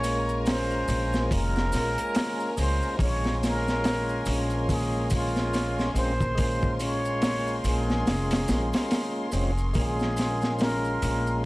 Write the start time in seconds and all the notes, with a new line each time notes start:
Already playing: A#1 G#3 A#3 C#4 F4 A#4 C#5 G#5 A#5
0.03 A#3, open hi-hat, maracas
0.29 maracas
0.46 C#4 C5, snare, open hi-hat, maracas
0.71 maracas
0.88 A#1 A#3, open hi-hat, maracas
1.13 snare, maracas
1.30 F1 A#3 A#4, kick, open hi-hat, maracas
1.56 snare, maracas
1.72 A#1 C#4, snare, open hi-hat, maracas
1.98 closed hi-hat, triangle, maracas
2.15 A#3, snare, open hi-hat, maracas
2.40 maracas
2.57 C#2 G#3 A#3 C#4 C5, open hi-hat, maracas
2.61 F4
2.82 maracas
2.97 A#1 G#3 C#4 C#5 C6, kick, open hi-hat, maracas
3.02 C#4 F4 C#5
3.24 snare, maracas
3.42 A#3 A#4, snare, open hi-hat, maracas
3.68 snare, maracas
3.84 A#3, snare, open hi-hat, maracas
4.09 maracas
4.26 A#1 C#4, open hi-hat, maracas
4.50 maracas
4.69 A#3 G#4, kick, open hi-hat, maracas
4.93 maracas
5.10 A#3 F4, kick, open hi-hat, maracas
5.36 snare, maracas
5.53 C#4, snare, open hi-hat, maracas
5.79 snare, maracas
5.94 A#1 G#3 A#3 C4 C#4 F4 C5, open hi-hat, maracas
6.21 kick, maracas
6.35 G#3 A#3 A#4, kick, open hi-hat, maracas
6.39 C#4 F4, triangle
6.62 kick, maracas
6.80 C#4 C#5, open hi-hat, maracas
7.05 maracas
7.22 A#3, snare, open hi-hat, maracas
7.47 maracas
7.64 A#1 A#3 G#4, open hi-hat, maracas
7.90 snare, maracas
8.06 F1 C#4, snare, open hi-hat, maracas
8.31 snare, open hi-hat, maracas
8.48 A#1 A#3, snare, open hi-hat, maracas
8.72 snare, open hi-hat, triangle, maracas
8.90 A#3, snare, open hi-hat, maracas
9.15 maracas
9.32 F1 G#3 C4 C#4, open hi-hat, maracas
9.36 F4
9.58 maracas
9.73 A#1 G#3 A#3 A#4, kick, open hi-hat, maracas
9.77 C#4 F4 G#4
9.99 snare, maracas
10.17 A#3, snare, open hi-hat, maracas
10.42 snare, maracas
10.59 C#4 A#4, snare, open hi-hat, maracas
10.85 maracas
11.02 A#1 A#3, open hi-hat, maracas
11.27 maracas